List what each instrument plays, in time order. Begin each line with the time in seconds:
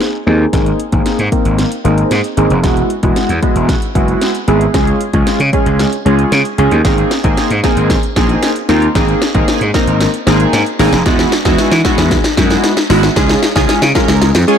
0.01 snare
0.27 slap bass D#2, synth keys A#3 C4 D#4 G#4
0.53 slap bass G#1, synth keys A#3 C4 D#4 G#4, kick, snare, closed hi-hat
0.66 closed hi-hat
0.80 closed hi-hat
0.92 slap bass G#1, synth keys A#3 C4 D#4 G#4, kick, closed hi-hat
1.06 snare, closed hi-hat
1.19 slap bass G#2, closed hi-hat
1.32 synth keys A#3 C4 D#4 A#4, kick, closed hi-hat
1.45 slap bass G#1, closed hi-hat
1.58 snare, closed hi-hat
1.72 closed hi-hat
1.84 slap bass G#1, synth keys A#3 C4 D#4 G#4, closed hi-hat
1.98 closed hi-hat
2.11 slap bass G#2, snare, closed hi-hat
2.24 closed hi-hat
2.37 slap bass G#1, synth keys A#3 C4 D#4 G#4, closed hi-hat
2.50 slap bass F1, closed hi-hat
2.63 slap bass E1, synth keys G#3 B3 E4 F#4, kick, snare, closed hi-hat
2.77 closed hi-hat
2.90 closed hi-hat
3.03 slap bass E1, synth keys G#3 B3 E4 F#4, kick, closed hi-hat
3.16 snare, closed hi-hat
3.29 slap bass E2, closed hi-hat
3.42 synth keys G#3 B3 E4 F#4, kick, closed hi-hat
3.56 slap bass E1, closed hi-hat
3.69 kick, snare, closed hi-hat
3.82 closed hi-hat
3.95 slap bass F#1, synth keys G#3 B3 E4 F#4, kick, closed hi-hat
4.08 closed hi-hat
4.21 snare, closed hi-hat
4.35 closed hi-hat
4.48 slap bass G#1, synth keys G#3 B3 E4 G#4, closed hi-hat
4.61 closed hi-hat
4.74 slap bass C#2, synth keys G#3 C#4 F4 G#4, kick, snare, closed hi-hat
4.87 closed hi-hat
5.01 closed hi-hat
5.13 slap bass C#2, synth keys G#3 C#4 F4 G#4, kick, closed hi-hat
5.27 snare, closed hi-hat
5.40 slap bass C#3, closed hi-hat
5.53 synth keys G#3 C#4 F4 G#4, kick, closed hi-hat
5.66 slap bass C#2, closed hi-hat
5.79 snare, closed hi-hat
5.93 closed hi-hat
6.05 slap bass C#2, synth keys G#3 C#4 F4 G#4, closed hi-hat
6.19 closed hi-hat
6.32 slap bass C#3, snare, closed hi-hat
6.45 closed hi-hat
6.58 slap bass C#2, synth keys G#3 C#4 F4 G#4, closed hi-hat
6.71 slap bass D#2, closed hi-hat
6.84 slap bass G#1, synth keys A#3 C4 D#4 G#4, kick, snare, closed hi-hat
6.98 closed hi-hat
7.11 snare, closed hi-hat
7.24 slap bass G#1, synth keys A#3 C4 D#4 G#4, kick, closed hi-hat
7.37 snare, closed hi-hat
7.50 slap bass G#2, closed hi-hat
7.63 synth keys A#3 C4 D#4 G#4, kick, snare, closed hi-hat
7.77 slap bass G#1, closed hi-hat
7.90 kick, snare, closed hi-hat
8.03 closed hi-hat
8.16 slap bass A#1, synth keys A#3 C4 D#4 G#4, kick, snare, closed hi-hat
8.29 closed hi-hat
8.43 snare, closed hi-hat
8.56 closed hi-hat
8.69 slap bass D#2, synth keys A#3 C4 D#4 F4, snare, closed hi-hat
8.82 closed hi-hat
8.95 slap bass G#1, synth keys A#3 C4 D#4 G#4, kick, snare, closed hi-hat
9.08 closed hi-hat
9.22 snare, closed hi-hat
9.34 slap bass G#1, synth keys A#3 C4 D#4 G#4, kick, closed hi-hat
9.48 snare, closed hi-hat
9.61 slap bass G#2, closed hi-hat
9.74 synth keys A#3 C4 D#4 A#4, kick, snare, closed hi-hat
9.87 slap bass G#1, closed hi-hat
10.01 snare, closed hi-hat
10.14 closed hi-hat
10.27 slap bass G#1, synth keys A#3 C4 D#4 G#4, snare, closed hi-hat
10.40 closed hi-hat
10.53 slap bass G#2, snare, closed hi-hat
10.66 closed hi-hat
10.79 slap bass G#1, synth keys A#3 C4 D#4 G#4, snare, open hi-hat
10.93 slap bass F1, snare, closed hi-hat
11.06 slap bass E2, synth keys G#3 B3 E4 F#4, kick, snare, closed hi-hat
11.19 snare, closed hi-hat
11.32 snare, closed hi-hat
11.45 slap bass E2, synth keys G#3 B3 E4 F#4, kick, snare, closed hi-hat
11.58 snare, closed hi-hat
11.71 slap bass E3, snare, closed hi-hat
11.85 synth keys G#3 B3 E4 F#4, kick, snare, closed hi-hat
11.98 slap bass E2, snare, closed hi-hat
12.11 kick, snare, closed hi-hat
12.24 snare, closed hi-hat
12.37 slap bass F#2, synth keys G#3 B3 E4 F#4, kick, snare, closed hi-hat
12.50 snare, closed hi-hat
12.64 snare, closed hi-hat
12.77 snare, closed hi-hat
12.90 slap bass G#1, synth keys G#3 B3 E4 F#4, snare, open hi-hat
13.03 snare, closed hi-hat
13.16 slap bass C#2, synth keys G#3 C#4 F4 G#4, kick, snare, closed hi-hat
13.29 snare, closed hi-hat
13.43 snare, closed hi-hat
13.55 slap bass C#2, synth keys G#3 C#4 F4 G#4, kick, snare, closed hi-hat
13.69 muted slap bass stroke, snare, closed hi-hat
13.82 slap bass C#3, snare, closed hi-hat
13.95 synth keys G#3 C#4 F4 A#4, kick, snare, closed hi-hat
14.08 slap bass C#2, snare, closed hi-hat
14.21 slap bass C#2, snare, closed hi-hat
14.35 slap bass F2, snare, closed hi-hat
14.48 synth keys G#3 C#4 F4 G#4, closed hi-hat